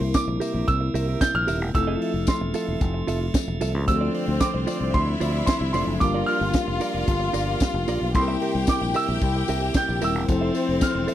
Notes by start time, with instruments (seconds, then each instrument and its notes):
Already playing: tonewheel organ C3 A#3 E4, tine electric piano G3 A#3 C4 E4 A#4, grand piano C6
0.01 fingered electric bass C2, muted clean electric guitar stroke
0.14 grand piano D6, muted clean electric guitar stroke, kick, snare, closed hi-hat, tambourine
0.28 fingered electric bass A#1, muted clean electric guitar stroke
0.40 clean electric guitar G4 A#4 E5, open hi-hat, tambourine
0.54 fingered electric bass A#1, clean electric guitar G4 A#4 E5
0.68 fingered electric bass C2, grand piano E6, kick, closed hi-hat, tambourine
0.81 muted clean electric guitar stroke
0.94 fingered electric bass C2, clean electric guitar G4 A#4 E5, open hi-hat, tambourine
1.08 clean electric guitar G4 A#4 E5
1.21 grand piano G6, kick, snare, closed hi-hat, tambourine
1.34 fingered electric bass A#1, grand piano F6, muted clean electric guitar stroke
1.47 fingered electric bass D#1, clean electric guitar G4 A#4 E5, open hi-hat, tambourine
1.61 fingered electric bass E1, muted clean electric guitar stroke
1.73 fingered electric bass F1, tine electric piano F3 A3 C4 E4 A4, tonewheel organ F3 A3 E4, grand piano E6, muted clean electric guitar stroke, kick, closed hi-hat, tambourine
1.87 clean electric guitar F4 A4 E5
2.01 clean electric guitar F4 A4 E5, open hi-hat
2.14 fingered electric bass F1, muted clean electric guitar stroke
2.27 grand piano C6, muted clean electric guitar stroke, kick, snare, closed hi-hat, tambourine
2.41 fingered electric bass E1, muted clean electric guitar stroke
2.54 clean electric guitar F4 A4 E5, open hi-hat, tambourine
2.68 fingered electric bass E1, clean electric guitar F4 A4 E5
2.81 fingered electric bass F1, muted clean electric guitar stroke, kick, closed hi-hat, tambourine
2.94 muted clean electric guitar stroke
3.07 fingered electric bass F1, clean electric guitar F4 A4 E5, open hi-hat, tambourine
3.21 muted clean electric guitar stroke
3.34 kick, snare, closed hi-hat, tambourine
3.48 fingered electric bass E1, muted clean electric guitar stroke
3.61 fingered electric bass C2, clean electric guitar F4 A4 E5, open hi-hat, tambourine
3.73 fingered electric bass C#2, muted clean electric guitar stroke
3.86 fingered electric bass D2, tonewheel organ D3 C4, tine electric piano F3 A3 C4 D4 G4, string section C4 C5, grand piano E6, muted clean electric guitar stroke, kick, closed hi-hat, tambourine
3.96 tine electric piano A4
4.01 clean electric guitar F4 C5 D5
4.14 clean electric guitar F4 C5 D5, open hi-hat
4.27 fingered electric bass D2, muted clean electric guitar stroke
4.40 grand piano D6, muted clean electric guitar stroke, kick, snare, closed hi-hat, tambourine
4.54 fingered electric bass C2, muted clean electric guitar stroke
4.67 clean electric guitar F4 C5 D5, open hi-hat, tambourine
4.80 fingered electric bass C2, clean electric guitar F4 C5 D5
4.94 fingered electric bass D2, string section E4 E5, grand piano C6, kick, closed hi-hat
5.07 muted clean electric guitar stroke
5.20 fingered electric bass D2, clean electric guitar F4 C5 D5, open hi-hat, tambourine
5.34 clean electric guitar F4 C5 D5
5.46 grand piano C6, kick, snare, closed hi-hat, tambourine
5.61 fingered electric bass C2, muted clean electric guitar stroke
5.73 fingered electric bass F1, tine electric piano F3 A3 C4 D4 A4, clean electric guitar F4 C5 D5, grand piano C6, open hi-hat, tambourine
5.87 fingered electric bass F#1, muted clean electric guitar stroke
6.00 fingered electric bass G1, tonewheel organ F3 A#3 G4, tine electric piano G3 A#3 D4 F4 A#4, string section F4 F5, grand piano D6, muted clean electric guitar stroke, kick, closed hi-hat, tambourine
6.14 clean electric guitar F4 A#4 D5
6.26 clean electric guitar F4 A#4 D5, grand piano F6, open hi-hat
6.41 fingered electric bass G1, muted clean electric guitar stroke
6.53 muted clean electric guitar stroke, kick, snare, closed hi-hat, tambourine
6.68 fingered electric bass F1, muted clean electric guitar stroke
6.80 clean electric guitar F4 A#4 D5, open hi-hat, tambourine
6.94 fingered electric bass F1, clean electric guitar F4 A#4 D5
7.07 fingered electric bass G1, muted clean electric guitar stroke, kick, closed hi-hat, tambourine
7.20 muted clean electric guitar stroke
7.33 fingered electric bass G1, clean electric guitar F4 A#4 D5, open hi-hat, tambourine
7.47 clean electric guitar F4 A#4 D5
7.60 kick, snare, closed hi-hat, tambourine
7.74 fingered electric bass F1, muted clean electric guitar stroke
7.87 fingered electric bass A#1, clean electric guitar F4 A#4 D5, open hi-hat, tambourine
8.02 fingered electric bass B1, muted clean electric guitar stroke
8.13 fingered electric bass C2, tonewheel organ C3 A#3 E4, tine electric piano G3 A#3 C4 E4 A4, string section G4 G5, grand piano C6, muted clean electric guitar stroke, kick, closed hi-hat, tambourine
8.22 tine electric piano A#4
8.28 clean electric guitar G4 A#4 E5
8.41 clean electric guitar G4 A#4 E5, open hi-hat
8.55 fingered electric bass C2, muted clean electric guitar stroke
8.67 grand piano D6, muted clean electric guitar stroke, kick, snare, closed hi-hat, tambourine
8.81 fingered electric bass A#1, muted clean electric guitar stroke
8.94 clean electric guitar G4 A#4 E5, grand piano E6, open hi-hat, tambourine
9.08 fingered electric bass A#1, clean electric guitar G4 A#4 E5
9.21 fingered electric bass C2, muted clean electric guitar stroke, kick, closed hi-hat, tambourine
9.36 muted clean electric guitar stroke
9.48 fingered electric bass C2, clean electric guitar G4 A#4 E5, open hi-hat, tambourine
9.62 clean electric guitar G4 A#4 E5
9.74 grand piano G6, kick, snare, closed hi-hat, tambourine
9.88 fingered electric bass A#1, muted clean electric guitar stroke
10.01 fingered electric bass D#1, tine electric piano G3 A#3 C4 E4 A#4, clean electric guitar G4 A#4 E5, grand piano E6, open hi-hat, tambourine
10.15 fingered electric bass E1, muted clean electric guitar stroke
10.27 fingered electric bass F1, tine electric piano F3 A3 C4 E4 A4, tonewheel organ F3 A3 E4, string section C4 C5, muted clean electric guitar stroke, kick, closed hi-hat, tambourine
10.41 clean electric guitar A4 C5 E5
10.54 clean electric guitar A4 C5 E5, open hi-hat, tambourine
10.68 fingered electric bass F1, muted clean electric guitar stroke
10.81 grand piano F6, muted clean electric guitar stroke, kick, snare, closed hi-hat, tambourine
10.95 fingered electric bass E1, muted clean electric guitar stroke
11.08 clean electric guitar A4 C5 E5, open hi-hat, tambourine